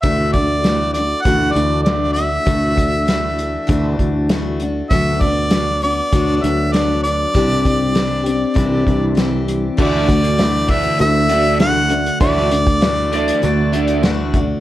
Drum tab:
CC |----------------|----------------|----------------|----------------|
HH |x-x-x-x-x-x-x-x-|x-x-x-x-x-x-x-x-|x-x-x-x-x-x-x-x-|x-x-x-x-x-x-x-x-|
SD |----o-------o---|----o-------o---|----o-------o---|----o-------o---|
BD |o-o-----o-------|o-o-----o-o-----|o-o-----o-------|o-o-----o-o-----|

CC |x---------------|----------------|
HH |--xxx-xxx-x-x-xx|x-xxx-xxx-xxx-x-|
SD |----o-------o---|-o--o-------o---|
BD |o-o---o---------|o--o----------o-|